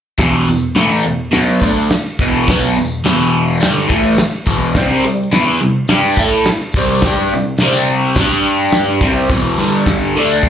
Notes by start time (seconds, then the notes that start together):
0.18 E2 B2 E3, kick, snare, crash
0.48 E2 B2, tambourine
0.75 A2 E3 A3, snare, tambourine, crash
0.92 tambourine
1.04 E2 B2
1.32 B2 F#3 B3, snare, tambourine, crash
1.49 tambourine
1.62 D3 A3 D4, kick, tambourine
1.90 muted overdriven electric guitar stroke, snare, tambourine, crash
2.08 tambourine
2.19 E2 B2 E3, kick, tambourine
2.35 tambourine
2.47 B2 F#3 B3, kick, snare, crash
2.76 E2 B2, tambourine
3.04 E2 B2 E3, snare, tambourine, crash
3.22 tambourine
3.60 G2 D3 G3, snare, tambourine, crash
3.78 tambourine
3.88 A2 E3 A3, kick
3.92 tambourine
4.17 muted overdriven electric guitar stroke, snare, tambourine, crash
4.33 tambourine
4.46 E2 B2 E3, kick, tambourine
4.62 tambourine
4.74 C3 G3 C4, kick, snare, crash
5.04 C3 G3, tambourine
5.32 E3 B3 E4, snare, tambourine, crash
5.46 tambourine
5.61 C3 G3
5.87 G3 D4, snare, tambourine, crash
5.92 G4
6.04 tambourine
6.17 A3 E4 A4, kick, tambourine
6.44 snare, tambourine, crash
6.49 muted overdriven electric guitar stroke
6.58 tambourine
6.72 kick, tambourine
6.76 C3 G3 C4
7.01 G3, kick, snare, tambourine, crash
7.06 D4 G4
7.28 tambourine
7.34 C3 G3
7.58 C3, snare, tambourine, crash
7.63 G3 C4
7.73 tambourine
8.01 tambourine
8.15 G3, kick, snare, tambourine, crash
8.20 D4 G4
8.43 tambourine
8.58 tambourine
8.72 snare, tambourine, crash
8.88 tambourine
9.01 C3 G3 C4, kick, tambourine
9.30 E2 B2 E3, kick, open hi-hat, tambourine
9.58 G2 D3 G3, tambourine
9.86 kick, snare, open hi-hat, tambourine
10.16 D3 A3 D4, tambourine
10.43 kick, open hi-hat, tambourine